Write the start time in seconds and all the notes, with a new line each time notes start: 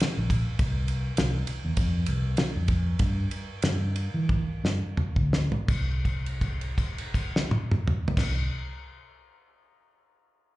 0.00 muted fingered electric bass stroke, snare, ride
0.17 A#1
0.30 kick, ride
0.59 C2, kick, ride
0.88 ride
1.17 C2, snare, ride
1.47 muted fingered electric bass stroke, ride
1.65 E2
1.77 F2, kick, ride
2.06 C2, ride
2.37 snare, ride
2.56 F2
2.68 kick, ride
2.99 G2, kick, ride
3.31 ride
3.62 G2, snare, ride
3.96 ride
4.14 E3
4.29 kick, high tom
4.64 G2, snare
4.97 muted fingered electric bass stroke, mid tom
5.16 D2, kick
5.33 snare
5.52 floor tom
5.68 C2, kick, crash
6.05 kick, crash
6.26 crash
6.41 kick, crash
6.61 crash
6.78 kick, crash
6.98 crash
7.14 kick, crash
7.36 snare
7.51 high tom
7.71 mid tom
7.88 mid tom
8.08 floor tom
8.17 C2, kick, snare, crash